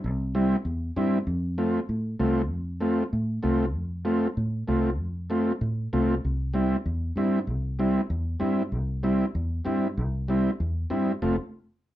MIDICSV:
0, 0, Header, 1, 3, 480
1, 0, Start_track
1, 0, Key_signature, -1, "major"
1, 0, Tempo, 310559
1, 56, Time_signature, 4, 2, 24, 8
1, 18470, End_track
2, 0, Start_track
2, 0, Title_t, "Transistor combo organ"
2, 0, Program_c, 0, 18
2, 537, Note_on_c, 0, 55, 82
2, 538, Note_on_c, 0, 60, 77
2, 543, Note_on_c, 0, 64, 89
2, 871, Note_off_c, 0, 55, 0
2, 872, Note_off_c, 0, 60, 0
2, 874, Note_off_c, 0, 64, 0
2, 1491, Note_on_c, 0, 55, 85
2, 1497, Note_on_c, 0, 60, 76
2, 1505, Note_on_c, 0, 64, 94
2, 1828, Note_off_c, 0, 55, 0
2, 1831, Note_off_c, 0, 60, 0
2, 1835, Note_off_c, 0, 64, 0
2, 2441, Note_on_c, 0, 57, 73
2, 2442, Note_on_c, 0, 60, 67
2, 2444, Note_on_c, 0, 65, 77
2, 2782, Note_off_c, 0, 57, 0
2, 2783, Note_off_c, 0, 60, 0
2, 2784, Note_off_c, 0, 65, 0
2, 3391, Note_on_c, 0, 57, 79
2, 3396, Note_on_c, 0, 60, 74
2, 3401, Note_on_c, 0, 65, 91
2, 3738, Note_off_c, 0, 57, 0
2, 3740, Note_off_c, 0, 60, 0
2, 3743, Note_off_c, 0, 65, 0
2, 4334, Note_on_c, 0, 57, 77
2, 4342, Note_on_c, 0, 60, 67
2, 4352, Note_on_c, 0, 65, 84
2, 4689, Note_off_c, 0, 57, 0
2, 4693, Note_off_c, 0, 60, 0
2, 4698, Note_off_c, 0, 65, 0
2, 5295, Note_on_c, 0, 57, 79
2, 5300, Note_on_c, 0, 60, 74
2, 5305, Note_on_c, 0, 65, 91
2, 5650, Note_off_c, 0, 57, 0
2, 5652, Note_off_c, 0, 60, 0
2, 5655, Note_off_c, 0, 65, 0
2, 6258, Note_on_c, 0, 57, 79
2, 6258, Note_on_c, 0, 65, 92
2, 6264, Note_on_c, 0, 60, 69
2, 6611, Note_off_c, 0, 57, 0
2, 6611, Note_off_c, 0, 65, 0
2, 6615, Note_off_c, 0, 60, 0
2, 7227, Note_on_c, 0, 57, 78
2, 7238, Note_on_c, 0, 65, 84
2, 7239, Note_on_c, 0, 60, 72
2, 7576, Note_off_c, 0, 57, 0
2, 7581, Note_off_c, 0, 65, 0
2, 7582, Note_off_c, 0, 60, 0
2, 8188, Note_on_c, 0, 57, 75
2, 8199, Note_on_c, 0, 60, 67
2, 8205, Note_on_c, 0, 65, 83
2, 8537, Note_off_c, 0, 57, 0
2, 8542, Note_off_c, 0, 60, 0
2, 8545, Note_off_c, 0, 65, 0
2, 9164, Note_on_c, 0, 57, 77
2, 9167, Note_on_c, 0, 60, 75
2, 9170, Note_on_c, 0, 65, 88
2, 9505, Note_off_c, 0, 57, 0
2, 9507, Note_off_c, 0, 60, 0
2, 9508, Note_off_c, 0, 65, 0
2, 10100, Note_on_c, 0, 55, 75
2, 10112, Note_on_c, 0, 60, 75
2, 10123, Note_on_c, 0, 64, 84
2, 10454, Note_off_c, 0, 55, 0
2, 10460, Note_off_c, 0, 60, 0
2, 10465, Note_off_c, 0, 64, 0
2, 11084, Note_on_c, 0, 55, 78
2, 11084, Note_on_c, 0, 60, 79
2, 11095, Note_on_c, 0, 64, 87
2, 11426, Note_off_c, 0, 55, 0
2, 11426, Note_off_c, 0, 60, 0
2, 11431, Note_off_c, 0, 64, 0
2, 12038, Note_on_c, 0, 55, 72
2, 12047, Note_on_c, 0, 60, 74
2, 12050, Note_on_c, 0, 64, 90
2, 12383, Note_off_c, 0, 55, 0
2, 12388, Note_off_c, 0, 60, 0
2, 12389, Note_off_c, 0, 64, 0
2, 12977, Note_on_c, 0, 55, 80
2, 12981, Note_on_c, 0, 60, 75
2, 12995, Note_on_c, 0, 64, 86
2, 13333, Note_off_c, 0, 55, 0
2, 13335, Note_off_c, 0, 60, 0
2, 13341, Note_off_c, 0, 64, 0
2, 13958, Note_on_c, 0, 55, 77
2, 13962, Note_on_c, 0, 60, 74
2, 13972, Note_on_c, 0, 64, 88
2, 14303, Note_off_c, 0, 55, 0
2, 14305, Note_off_c, 0, 60, 0
2, 14310, Note_off_c, 0, 64, 0
2, 14909, Note_on_c, 0, 55, 84
2, 14922, Note_on_c, 0, 60, 75
2, 14932, Note_on_c, 0, 64, 86
2, 15259, Note_off_c, 0, 55, 0
2, 15266, Note_off_c, 0, 60, 0
2, 15271, Note_off_c, 0, 64, 0
2, 15895, Note_on_c, 0, 55, 80
2, 15914, Note_on_c, 0, 60, 67
2, 15917, Note_on_c, 0, 64, 85
2, 16232, Note_off_c, 0, 55, 0
2, 16241, Note_off_c, 0, 60, 0
2, 16243, Note_off_c, 0, 64, 0
2, 16848, Note_on_c, 0, 60, 71
2, 16850, Note_on_c, 0, 55, 84
2, 16860, Note_on_c, 0, 64, 86
2, 17189, Note_off_c, 0, 60, 0
2, 17190, Note_off_c, 0, 55, 0
2, 17195, Note_off_c, 0, 64, 0
2, 17343, Note_on_c, 0, 60, 72
2, 17343, Note_on_c, 0, 65, 91
2, 17348, Note_on_c, 0, 57, 78
2, 17563, Note_off_c, 0, 65, 0
2, 17564, Note_off_c, 0, 60, 0
2, 17566, Note_off_c, 0, 57, 0
2, 18470, End_track
3, 0, Start_track
3, 0, Title_t, "Fingered electric bass"
3, 0, Program_c, 1, 33
3, 63, Note_on_c, 1, 36, 99
3, 827, Note_off_c, 1, 36, 0
3, 1002, Note_on_c, 1, 40, 96
3, 1391, Note_off_c, 1, 40, 0
3, 1489, Note_on_c, 1, 43, 88
3, 1875, Note_off_c, 1, 43, 0
3, 1958, Note_on_c, 1, 41, 91
3, 2732, Note_off_c, 1, 41, 0
3, 2919, Note_on_c, 1, 45, 92
3, 3308, Note_off_c, 1, 45, 0
3, 3394, Note_on_c, 1, 36, 89
3, 3866, Note_off_c, 1, 36, 0
3, 3866, Note_on_c, 1, 41, 99
3, 4644, Note_off_c, 1, 41, 0
3, 4832, Note_on_c, 1, 45, 95
3, 5224, Note_off_c, 1, 45, 0
3, 5314, Note_on_c, 1, 36, 83
3, 5803, Note_off_c, 1, 36, 0
3, 5803, Note_on_c, 1, 41, 100
3, 6575, Note_off_c, 1, 41, 0
3, 6753, Note_on_c, 1, 45, 98
3, 7145, Note_off_c, 1, 45, 0
3, 7236, Note_on_c, 1, 36, 83
3, 7718, Note_off_c, 1, 36, 0
3, 7718, Note_on_c, 1, 41, 98
3, 8493, Note_off_c, 1, 41, 0
3, 8673, Note_on_c, 1, 45, 96
3, 9065, Note_off_c, 1, 45, 0
3, 9166, Note_on_c, 1, 36, 82
3, 9553, Note_off_c, 1, 36, 0
3, 9653, Note_on_c, 1, 36, 94
3, 10422, Note_off_c, 1, 36, 0
3, 10596, Note_on_c, 1, 40, 96
3, 10988, Note_off_c, 1, 40, 0
3, 11062, Note_on_c, 1, 43, 85
3, 11548, Note_on_c, 1, 36, 90
3, 11572, Note_off_c, 1, 43, 0
3, 12328, Note_off_c, 1, 36, 0
3, 12517, Note_on_c, 1, 40, 93
3, 12909, Note_off_c, 1, 40, 0
3, 13005, Note_on_c, 1, 43, 86
3, 13476, Note_on_c, 1, 36, 102
3, 13499, Note_off_c, 1, 43, 0
3, 14252, Note_off_c, 1, 36, 0
3, 14448, Note_on_c, 1, 40, 97
3, 14835, Note_off_c, 1, 40, 0
3, 14931, Note_on_c, 1, 43, 84
3, 15416, Note_on_c, 1, 36, 104
3, 15439, Note_off_c, 1, 43, 0
3, 16185, Note_off_c, 1, 36, 0
3, 16383, Note_on_c, 1, 40, 92
3, 16765, Note_off_c, 1, 40, 0
3, 16858, Note_on_c, 1, 43, 82
3, 17242, Note_off_c, 1, 43, 0
3, 17340, Note_on_c, 1, 29, 89
3, 17562, Note_off_c, 1, 29, 0
3, 18470, End_track
0, 0, End_of_file